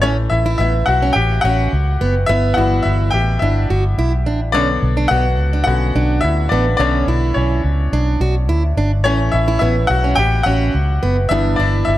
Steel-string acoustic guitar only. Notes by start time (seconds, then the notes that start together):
0.03 C#4
0.46 E4
0.60 B3
1.02 C#4
1.45 C#4
2.01 B3
2.29 B3
2.58 E4
3.42 D4
3.70 F#4
3.99 E4
4.26 D4
4.55 C#4
4.97 D4
5.11 B3
5.53 D4
5.96 D4
6.52 B3
6.80 C#4
7.08 E4
7.93 D4
8.21 F#4
8.49 E4
8.78 D4
9.05 C#4
9.48 E4
9.61 B3
10.04 C#4
10.46 C#4
11.03 B3
11.31 D4
11.60 E4